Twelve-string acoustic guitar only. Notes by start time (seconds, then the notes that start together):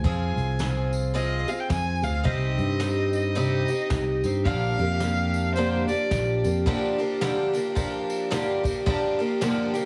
0.04 F3 C4 F4 G#4
0.60 F3 C4 F4 G#4
1.14 F3 C4 F4 G#4
1.48 C4 F4 G#4
2.02 C4 F4 G#4
2.24 C3 G3 C4 D#4 G4
2.80 G3 C4 D#4 G4
3.35 C3 G3 C4 D#4 G4
3.69 C4 D#4 G4
4.24 C4 D#4 G4
4.45 A#2 D3 F3 A#3 D4 G4
4.80 F3 A#3 D4 G4
5.02 F3 A#3 D4 G4
5.57 A#2 D3 F3 A#3 D4 G4
5.88 F3 A#3 D4 G4
6.44 F3 A#3 D4 G4
6.66 G2 D3 F3 A#3 D4 G4
6.99 F3 A#3 D4 G4
7.21 G2 D3 F3 A#3 D4 G4
7.53 F3 A#3 D4 G4
7.75 F3 A#3 D4 G4
8.31 G2 D3 F3 A#3 D4 G4
8.64 F3 A#3 D4 G4
8.86 G2 D3 F3 A#3 D4 G4
9.19 F3 A#3 D4 G4
9.41 G2 D3 F3 A#3 D4 G4
9.74 F3 A#3 D4 G4